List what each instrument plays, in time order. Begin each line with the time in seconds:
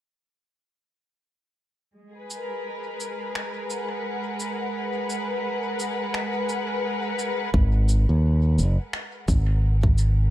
1.96 string section G#3
2.13 string section G#4
2.20 string section B4
2.30 shaker
2.38 string section A#4
3.00 shaker
3.35 finger snap
3.70 string section F#5, shaker
4.40 shaker
5.10 shaker
5.80 shaker
6.14 finger snap
6.49 shaker
7.19 shaker
7.54 fingered electric bass G#1, kick
7.89 shaker
8.09 fingered electric bass D#2
8.59 fingered electric bass F#1, shaker
8.93 finger snap
9.28 fingered electric bass G#1, kick, shaker
9.83 kick
9.98 shaker